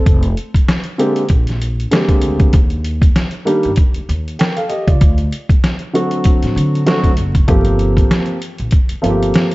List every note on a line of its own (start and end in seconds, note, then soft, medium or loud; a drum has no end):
0.00 0.23 C4 soft
0.00 0.22 A4 medium
0.06 0.33 F1 medium
0.06 kick loud
0.06 closed hi-hat medium
0.23 closed hi-hat soft
0.37 closed hi-hat medium
0.54 kick medium
0.54 closed hi-hat medium
0.68 snare loud
0.68 closed hi-hat medium
0.84 closed hi-hat soft
0.98 1.21 D3 medium
0.98 1.22 G#3 medium
0.98 1.22 A#3 medium
0.98 1.22 C4 medium
0.98 1.22 G4 medium
0.98 closed hi-hat medium
1.16 closed hi-hat soft
1.29 1.84 A#1 medium
1.29 kick medium
1.29 closed hi-hat medium
1.47 snare soft
1.47 closed hi-hat soft
1.62 closed hi-hat medium
1.80 closed hi-hat medium
1.91 2.53 D3 medium
1.91 2.53 G#3 medium
1.91 2.54 A#3 medium
1.91 2.54 C4 medium
1.91 2.54 G4 medium
1.91 snare loud
1.91 closed hi-hat medium
2.08 kick medium
2.08 closed hi-hat soft
2.21 2.50 D2 medium
2.21 closed hi-hat medium
2.40 kick medium
2.40 closed hi-hat soft
2.53 3.07 D#2 loud
2.53 kick loud
2.53 closed hi-hat medium
2.70 closed hi-hat soft
2.84 closed hi-hat medium
3.02 kick loud
3.02 closed hi-hat soft
3.16 snare medium
3.16 closed hi-hat medium
3.31 closed hi-hat soft
3.45 3.69 D#3 medium
3.45 3.69 G3 medium
3.45 3.69 A#3 medium
3.45 3.69 D4 medium
3.45 3.69 G4 medium
3.45 closed hi-hat medium
3.63 3.76 G2 medium
3.63 closed hi-hat medium
3.76 kick medium
3.76 closed hi-hat medium
3.94 muted upright bass stroke soft
3.94 closed hi-hat medium
4.09 4.36 D#2 medium
4.09 closed hi-hat medium
4.28 closed hi-hat soft
4.39 4.56 A#4 medium
4.39 4.56 G5 medium
4.39 snare loud
4.39 closed hi-hat medium
4.56 4.70 A4 medium
4.56 4.69 F5 medium
4.56 closed hi-hat soft
4.69 4.87 G4 soft
4.69 4.86 D#5 medium
4.69 closed hi-hat medium
4.87 4.99 C#2 medium
4.87 5.17 F4 soft
4.87 5.17 D5 medium
4.87 kick medium
4.87 closed hi-hat soft
5.01 5.28 D2 loud
5.01 kick loud
5.01 closed hi-hat medium
5.18 closed hi-hat soft
5.32 closed hi-hat medium
5.49 kick medium
5.49 closed hi-hat medium
5.64 snare medium
5.64 closed hi-hat medium
5.79 closed hi-hat soft
5.93 6.81 D3 medium
5.93 6.81 F#3 medium
5.93 6.81 A3 medium
5.93 6.82 C4 medium
5.93 6.82 F#4 medium
5.93 closed hi-hat medium
6.11 closed hi-hat medium
6.24 kick medium
6.24 closed hi-hat medium
6.43 6.54 A2 medium
6.43 snare soft
6.43 closed hi-hat medium
6.56 6.83 D3 medium
6.56 closed hi-hat medium
6.75 closed hi-hat soft
6.86 7.09 D3 medium
6.86 7.09 F#3 medium
6.86 7.10 A3 medium
6.86 7.10 C4 medium
6.86 7.10 F#4 medium
6.86 snare loud
6.86 closed hi-hat medium
7.04 7.16 D2 medium
7.04 kick medium
7.04 closed hi-hat soft
7.17 7.45 F#1 medium
7.17 closed hi-hat medium
7.35 kick medium
7.35 closed hi-hat soft
7.48 8.02 G1 loud
7.48 8.36 F3 medium
7.48 8.36 A3 medium
7.48 8.36 A#3 medium
7.48 8.36 C4 medium
7.48 8.36 G4 medium
7.48 kick loud
7.48 closed hi-hat medium
7.65 closed hi-hat soft
7.79 closed hi-hat medium
7.97 kick medium
7.97 closed hi-hat soft
8.11 snare medium
8.11 closed hi-hat medium
8.26 closed hi-hat soft
8.42 closed hi-hat medium
8.58 8.71 A#1 medium
8.58 closed hi-hat medium
8.71 kick medium
8.71 closed hi-hat medium
8.89 muted upright bass stroke soft
8.89 closed hi-hat medium
9.02 9.30 G1 medium
9.02 9.55 F3 medium
9.02 9.55 A3 medium
9.02 9.55 A#3 medium
9.02 9.55 C4 medium
9.02 9.11 F4 medium
9.02 closed hi-hat medium
9.10 9.55 G4 medium
9.23 closed hi-hat soft
9.34 snare loud
9.34 closed hi-hat medium
9.51 closed hi-hat soft